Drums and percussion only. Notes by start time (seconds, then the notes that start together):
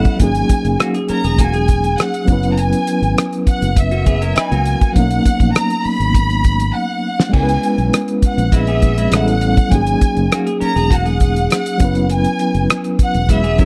0.05 kick, closed hi-hat
0.20 kick, closed hi-hat
0.35 closed hi-hat
0.49 kick, closed hi-hat
0.65 closed hi-hat
0.80 cross-stick, closed hi-hat
0.94 closed hi-hat
1.08 closed hi-hat
1.24 closed hi-hat
1.38 kick, cross-stick, closed hi-hat
1.53 closed hi-hat
1.68 kick, closed hi-hat
1.84 closed hi-hat
1.98 cross-stick, closed hi-hat
2.14 closed hi-hat
2.27 kick, closed hi-hat
2.43 closed hi-hat
2.58 closed hi-hat
2.73 closed hi-hat
2.87 closed hi-hat
3.03 closed hi-hat
3.18 cross-stick, closed hi-hat
3.33 closed hi-hat
3.47 kick, closed hi-hat
3.62 closed hi-hat
3.76 kick, closed hi-hat
3.91 closed hi-hat
4.06 kick, closed hi-hat
4.22 closed hi-hat
4.36 cross-stick, closed hi-hat
4.52 closed hi-hat
4.65 closed hi-hat
4.81 kick, closed hi-hat
4.96 kick, closed hi-hat
5.11 closed hi-hat
5.25 kick, closed hi-hat
5.40 kick, closed hi-hat
5.55 cross-stick, closed hi-hat
5.70 closed hi-hat
5.84 open hi-hat
6.00 closed hi-hat
6.14 kick, closed hi-hat
6.30 closed hi-hat
6.44 kick, closed hi-hat
6.60 closed hi-hat
7.20 snare
7.33 kick, crash
7.49 closed hi-hat
7.63 closed hi-hat
7.78 closed hi-hat
7.93 cross-stick, closed hi-hat
8.08 closed hi-hat
8.22 kick, closed hi-hat
8.38 closed hi-hat
8.52 kick, cross-stick, closed hi-hat
8.67 closed hi-hat
8.82 kick, closed hi-hat
8.98 closed hi-hat
9.12 cross-stick, closed hi-hat
9.28 closed hi-hat
9.41 closed hi-hat
9.57 kick, closed hi-hat
9.72 kick, closed hi-hat
9.87 closed hi-hat
10.01 kick, closed hi-hat
10.17 closed hi-hat
10.32 cross-stick, closed hi-hat
10.47 closed hi-hat
10.61 closed hi-hat
10.77 closed hi-hat
10.91 kick, closed hi-hat
11.06 closed hi-hat
11.20 kick, closed hi-hat
11.36 closed hi-hat
11.50 cross-stick, closed hi-hat
11.66 closed hi-hat
11.80 kick, closed hi-hat
11.95 closed hi-hat
12.10 closed hi-hat
12.24 closed hi-hat
12.39 closed hi-hat
12.55 closed hi-hat
12.70 cross-stick, closed hi-hat
12.84 closed hi-hat
12.99 kick, closed hi-hat
13.14 closed hi-hat
13.29 kick, cross-stick, closed hi-hat
13.44 closed hi-hat
13.58 kick, closed hi-hat